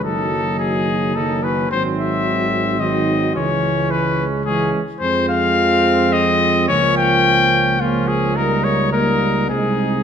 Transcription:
<<
  \new Staff \with { instrumentName = "Trumpet" } { \time 3/4 \key cis \minor \tempo 4 = 108 a'4 gis'4 a'8 b'8 | bis'8 e''4. dis''4 | cis''4 b'8 r8 gis'8 r8 | \key f \minor c''8 f''4. ees''4 |
des''8 g''4. f'8 aes'8 | bes'8 des''8 bes'4 aes'4 | }
  \new Staff \with { instrumentName = "Trumpet" } { \time 3/4 \key cis \minor dis'2 dis'8 cis'8 | bis2 bis4 | cis'2 cis'8 r8 | \key f \minor c'2. |
des'2 des'4 | ees'4 ees'4 ees'4 | }
  \new Staff \with { instrumentName = "French horn" } { \clef bass \time 3/4 \key cis \minor fis2 fis4 | fis2 fis4 | gis2 gis8 r8 | \key f \minor aes2. |
bes2 bes4 | bes4 bes4 c'4 | }
  \new Staff \with { instrumentName = "Trombone" } { \clef bass \time 3/4 \key cis \minor dis2 dis4 | dis2 dis4 | e2 e8 r8 | \key f \minor f2. |
f2 f4 | g4 g4 aes4 | }
  \new Staff \with { instrumentName = "Tuba" } { \clef bass \time 3/4 \key cis \minor fis,,2. | gis,,2. | cis,2~ cis,8 r8 | \key f \minor f,2. |
des,2.~ | des,2 c,4 | }
>>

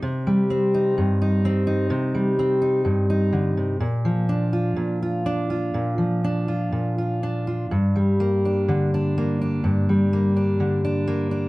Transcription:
\new Staff \with { instrumentName = "Steel-string acoustic guitar" } { \time 4/4 \key bes \major \tempo 4 = 63 << { r8 c'16 ees'8 ees'16 c'16 ees'8. c'16 ees'8 ees'8. | r8 d'16 f'8 f'16 d'16 f'8. d'16 f'8 f'16 d'16 f'16 | r8 bes16 d'8 d'16 bes16 d'8. bes16 d'8 d'16 bes16 d'16 | } \\ { c16 g8. g,4 c16 g8. g,8 d16 c16 | bes,16 f8. bes,4 bes,16 f8. bes,4 | g,16 g8. d4 g,16 g8. d4 | } >> }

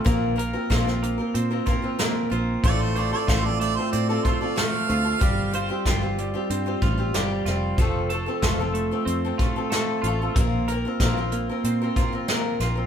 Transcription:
<<
  \new Staff \with { instrumentName = "Harmonica" } { \time 4/4 \key f \major \tempo 4 = 93 r1 | d''16 c''16 d''16 d''16 c''16 d''16 d''16 c''16 d''16 d''16 c''16 d''16 f''4~ | f''4 r2. | r1 |
r1 | }
  \new Staff \with { instrumentName = "Steel-string acoustic guitar" } { \time 4/4 \key f \major <bes, bes c' f' bes'>8 <bes c' f' bes'>16 <c' f' bes'>16 <bes, bes c' f' bes'>16 <c' f' bes'>8 <c' f' bes'>8 <c' f' bes'>16 <bes c' f' bes'>16 <c' f' bes'>16 <bes, bes c' f' bes'>8 <bes c' f' bes'>8 | <a c' f' a'>8 <a c' f' a'>16 <c' f' a'>16 <a c' f' a'>16 <c' f' a'>8 <c' f' a'>8 <c' f' a'>16 <a c' f' a'>16 <c' f' a'>16 <a c' f' a'>8 <a c' f' a'>16 <c' f' a'>16 | <g c' f' g'>8 <g c' f' g'>16 <c' f' g'>16 <g c' f' g'>16 <c' f' g'>8 <c' f' g'>8 <c' f' g'>16 <g c' f' g'>16 <c' f' g'>16 <g c' f' g'>8 <g c' f' g'>8 | <f, f a c' f' a'>8 <a c' f' a'>16 <a c' f' a'>16 <f, f a c' f' a'>16 <a c' f' a'>8 <a c' f' a'>8 <a c' f' a'>16 <a c' f' a'>16 <a c' f' a'>16 <f, f a c' f' a'>8 <a c' f' a'>16 <a c' f' a'>16 |
<bes, bes c' f' bes'>8 <bes c' f' bes'>16 <c' f' bes'>16 <bes, bes c' f' bes'>16 <c' f' bes'>8 <c' f' bes'>8 <c' f' bes'>16 <bes c' f' bes'>16 <c' f' bes'>16 <bes, bes c' f' bes'>8 <bes c' f' bes'>16 <c' f' bes'>16 | }
  \new Staff \with { instrumentName = "Clean electric guitar" } { \time 4/4 \key f \major bes8 bes'8 f'8 bes8 c'8 f'8 bes8 f'8 | a,8 c''8 f'8 a8 c'8 f'8 a8 f'8 | g8 c''8 f'8 g8 c'8 f'8 g8 f'8 | f8 a'8 f'8 a8 c'8 f'8 a8 f'8 |
bes8 bes'8 f'8 bes8 c'8 f'8 bes8 f'8 | }
  \new Staff \with { instrumentName = "Fingered electric bass" } { \clef bass \time 4/4 \key f \major bes,,4 bes,,4 bes,8 r4 bes,,8 | a,,4 a,,4 a,8 r4 d,8 | g,,4 g,,4 g,8 a,,8 g,,8 f,,8 | f,,4 f,,4 f,8 r4 a,,8 |
bes,,4 bes,,4 bes,8 r4 bes,,8 | }
  \new DrumStaff \with { instrumentName = "Drums" } \drummode { \time 4/4 <hh bd>8 hh8 <hh bd sn>16 sn16 hh8 hh8 <hh bd>8 <hh sn>8 hh8 | <hh bd>8 hh8 <hh bd sn>8 hh8 hh8 <hh bd>8 <hh sn>8 hh8 | <hh bd>8 hh8 <hh bd sn>8 hh8 hh8 <hh bd>8 <hh sn>8 <hh sn>8 | <hh bd>8 hh8 <hh bd sn>8 hh8 hh8 <hh bd>8 <hh sn>8 hh8 |
<hh bd>8 hh8 <hh bd sn>8 hh8 hh8 <hh bd>8 <hh sn>8 <hh sn>8 | }
>>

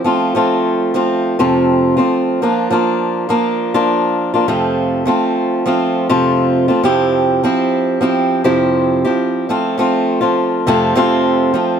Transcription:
\new Staff \with { instrumentName = "Steel-string acoustic guitar" } { \time 4/4 \key f \major \tempo 4 = 102 <f a c' f'>8 <f a c' f'>4 <f a c' f'>8. <f, c f a c' f'>4 <f a c' f'>8. | <f bes d' f'>8 <f bes d' f'>4 <f bes d' f'>8. <f bes d' f'>4 <bes d' f'>16 <f, c f a c' f'>8~ | <f, c f a c' f'>8 <f a c' f'>4 <f a c' f'>8. <f, c f a c' f'>4 <f a c' f'>16 <f, c f c' e' g'>8~ | <f, c f c' e' g'>8 <f c' e' g'>4 <f c' e' g'>8. <f, c f c' e' g'>4 <f c' e' g'>8. |
<f a c' f'>8 <f a c' f'>8. <f a c' f'>8. <f, c f a c' f'>8 <f, c f a c' f'>4 <f a c' f'>8 | }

